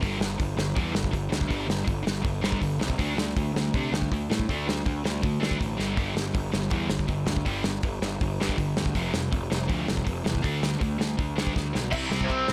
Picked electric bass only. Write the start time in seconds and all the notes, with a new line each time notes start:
0.03 G1
0.19 G1
0.40 G1
0.56 G1
0.77 E2
0.95 G1
1.14 G1
1.31 D2
1.51 G1
1.87 G1
2.06 G1
2.25 G1
2.62 G1
2.78 C2
2.99 D2
3.16 D2
3.36 D2
3.54 D2
3.74 C3
3.91 D2
4.12 D2
4.29 A2
4.50 D2
4.86 D2
5.05 D2
5.23 D2
5.61 A1
5.79 G1
5.98 G1
6.15 G1
6.35 G1
6.53 G1
6.72 E2
6.89 G1
7.09 G1
7.26 D2
7.47 G1
7.83 G1
8.01 G1
8.21 G1
8.59 G1
8.76 D2
8.96 F1
9.13 F1
9.33 F1
9.51 F1
9.69 D2
9.88 F1
10.07 F1
10.26 E2
10.44 D2
10.81 D2
10.99 D2
11.20 D2
11.56 D2
11.75 B1
11.93 C2
12.10 C2
12.30 C2
12.48 A1